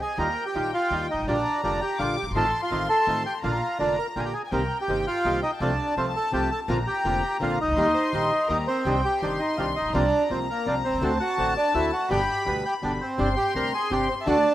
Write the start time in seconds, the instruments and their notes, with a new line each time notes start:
Already playing: violin section D#5
0.01 bandoneon G#4 G#5
0.18 upright bass D#2, nylon-string guitar D#3 G3 D#4 F4, bandoneon D#4 F4 G4 A#4 A#5, violin section G5
0.46 bandoneon G4 G5
0.54 upright bass A#1, nylon-string guitar D#3 G3 D#4 F4, bandoneon D#4 F4 G4
0.74 bandoneon F4 F5
0.91 upright bass D#2, nylon-string guitar D#3 G3 D#4 F4, bandoneon D#4 F4 G4
1.10 upright bass G1, bandoneon D#4 D#5
1.19 upright bass G#1
1.23 upright bass A1
1.27 upright bass A#1, nylon-string guitar D3 G3 D4 F4, bandoneon A#3 D4 G4 D5, violin section A#5
1.63 upright bass F1, nylon-string guitar D3 G3 D4 F4, bandoneon A#3 D4 G4 D5
1.81 bandoneon G4 G5
1.99 upright bass A#1, nylon-string guitar D3 G3 D4 F4, bandoneon A#3 D4 F4 G4 F5, violin section D6
2.17 bandoneon G4 G5
2.22 upright bass F#1
2.27 upright bass G1 G#1
2.34 upright bass A1, nylon-string guitar D#3 A3 C4 F4, bandoneon A3 D#4 F4 A4 A5, violin section C6
2.63 bandoneon F4 F5
2.71 upright bass A1, nylon-string guitar D#3 A3 C4 F4, bandoneon A3 D#4 F4
2.89 bandoneon A4 A5
3.07 upright bass A1, nylon-string guitar D#3 A3 C4 F4, bandoneon A3 D#4 F4
3.26 bandoneon G4 G5
3.42 upright bass A#1, nylon-string guitar D3 A#3 D4 F4, bandoneon A#3 D4 F4 F5, violin section A#5
3.79 upright bass F1, nylon-string guitar D3 A#3 D4 F4, bandoneon A#3 D4 F4 D5
3.98 bandoneon A#4 A#5
4.16 upright bass A#1, nylon-string guitar D3 A#3 D4 F4, bandoneon A#3 D4 F4 G4 G5
4.20 bandoneon G#5
4.25 bandoneon G4 G5
4.34 bandoneon G#4 G#5
4.45 violin section G#5
4.52 upright bass C2, nylon-string guitar C3 D#3 A#3 C4 G4, bandoneon A#3 C4 D#4 A#4 A#5, violin section G5
4.81 bandoneon G4 G5
4.88 upright bass G1, nylon-string guitar C3 D#3 A#3 C4 G4, bandoneon A#3 C4 D#4
5.07 bandoneon F4 F5
5.24 upright bass C2, nylon-string guitar C3 D#3 A#3 C4 G4, bandoneon A#3 C4 D#4
5.43 bandoneon D#4 D#5
5.60 upright bass C2, nylon-string guitar C3 F3 A3 C4 F4, bandoneon A3 C4 D4 F4 D5, violin section A5
5.96 upright bass C2, nylon-string guitar C3 F3 A3 C4 F4, bandoneon A3 C4 F4 C5
6.16 bandoneon A4 A5
6.32 upright bass C2, nylon-string guitar C3 F3 A3 C4 F4, bandoneon A3 C4 F4 G4 G5
6.51 bandoneon A4 A5
6.68 upright bass A#1, nylon-string guitar D3 A#3 C4 F4, bandoneon A#3 C4 D4 A#4 A#5, violin section A#5
6.87 bandoneon G4 G5
7.04 upright bass F1, nylon-string guitar D3 A#3 C4 F4, bandoneon A#3 C4 D4
7.40 upright bass A#1, nylon-string guitar D3 A#3 C4 F4, bandoneon A#3 C4 D4 F4 F5
7.61 upright bass C2, bandoneon D#4 D#5
7.68 upright bass C#2 D2
7.76 upright bass D#2, nylon-string guitar D#3 G3 A#3 D#4 G4, bandoneon G3 A#3 D#4, violin section C6
7.94 hollow-body jazz guitar C5
8.13 upright bass A#1, nylon-string guitar D#3 G3 A#3 D#4 G4, bandoneon G3 A#3 D#4
8.48 upright bass D#2, nylon-string guitar D#3 G3 A#3 D#4 G4, bandoneon G3 A#3 D#4 D#5, hollow-body jazz guitar A#4, violin section A#5
8.68 bandoneon C4 C5
8.85 upright bass C2, nylon-string guitar C3 D#3 G3 D4 G4, bandoneon C4 D4 D#4, violin section G5
9.05 bandoneon G4 G5
9.22 upright bass G1, nylon-string guitar C3 D#3 G3 D4 G4, bandoneon C4 D4 D#4, violin section C6
9.39 bandoneon D#4 D#5
9.57 upright bass C2, nylon-string guitar C3 D#3 G3 D4 G4, bandoneon C4 D4 D#4 F4 F5
9.76 bandoneon D#4 D#5
9.81 upright bass A1
9.85 upright bass A#1
9.90 upright bass B1, nylon-string guitar C3 F3 A#3, bandoneon A#3 D5, violin section A#5
9.94 upright bass C2, bandoneon C4 D4 F4, nylon-string guitar C4 F4
10.30 upright bass C2, nylon-string guitar C3 F3 A#3 C4 F4, bandoneon A#3 C4 F4 C5
10.50 bandoneon A#3 A#4
10.66 upright bass C2, nylon-string guitar C3 F3 A#3 C4 F4, bandoneon A#3 C4 D4 F4 D5
10.84 bandoneon C4 C5
10.89 upright bass B1
10.94 upright bass C2
10.98 upright bass C#2, nylon-string guitar D3 A3, violin section A5
11.02 upright bass D2, nylon-string guitar C4 F#4, bandoneon C4 D4 F#4
11.20 bandoneon F#4 F#5
11.37 upright bass A1, nylon-string guitar D3 A3 C4 F#4, bandoneon C4 D4 F#4
11.57 bandoneon D4 D5
11.74 upright bass D2, nylon-string guitar D3 A3 C4 F#4, bandoneon C4 D4 E4 F#4 E5
11.93 bandoneon F#4 F#5
12.09 upright bass G1, nylon-string guitar B2 D3 G3 B3 G4, bandoneon B3 D4 G4 G5, violin section B5
12.45 upright bass D2, nylon-string guitar B2 D3 G3 B3 G4, bandoneon B3 D4 G4 B4 B5
12.66 bandoneon G4 G5
12.82 upright bass G1, nylon-string guitar B2 D3 G3 B3 G4, bandoneon B3 D4 G4 D5
13.01 bandoneon C4 C5
13.18 upright bass G1, nylon-string guitar C3 G3 C4 D4 G4, bandoneon C4 D4 G4, violin section C6
13.36 bandoneon G4 G5
13.54 upright bass D2, nylon-string guitar C3 G3 C4 D4 G4, bandoneon C4 D4 G4 A#4 A#5
13.74 bandoneon G#4 G#5
13.90 upright bass G1, nylon-string guitar C3 G3 C4 D4 G4, bandoneon C4 D4 G4 G5
14.09 bandoneon C4 C5
14.21 bandoneon E5
14.26 upright bass D2, nylon-string guitar D3 A3 D4 F#4, bandoneon A3 D4 F#4 D5, violin section A5